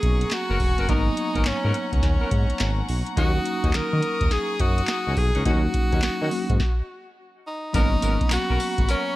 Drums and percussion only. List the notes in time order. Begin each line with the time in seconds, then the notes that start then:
0.03 kick, closed hi-hat
0.21 closed hi-hat
0.31 snare, clap, closed hi-hat
0.60 kick, open hi-hat
0.78 closed hi-hat
0.89 kick, closed hi-hat
1.17 closed hi-hat
1.35 kick, closed hi-hat
1.45 snare, clap, closed hi-hat
1.74 closed hi-hat
1.93 kick, closed hi-hat
2.03 kick, snare, closed hi-hat
2.31 kick, closed hi-hat
2.50 closed hi-hat
2.59 snare, clap, closed hi-hat
2.89 open hi-hat
3.07 closed hi-hat
3.17 kick, closed hi-hat
3.45 closed hi-hat
3.64 kick, closed hi-hat
3.73 snare, clap, closed hi-hat
4.03 closed hi-hat
4.21 kick, closed hi-hat
4.31 snare, closed hi-hat
4.60 kick, closed hi-hat
4.78 closed hi-hat
4.87 snare, clap, closed hi-hat
5.17 kick, open hi-hat
5.35 closed hi-hat
5.45 kick, closed hi-hat
5.74 kick, closed hi-hat
5.92 kick, closed hi-hat
6.02 snare, clap, closed hi-hat
6.31 open hi-hat
6.50 kick, closed hi-hat
6.60 kick, snare
7.74 kick, closed hi-hat, tambourine
8.02 closed hi-hat, tambourine
8.21 kick, closed hi-hat
8.30 snare, clap, closed hi-hat, tambourine
8.60 open hi-hat, tambourine
8.78 kick, closed hi-hat
8.89 closed hi-hat, tambourine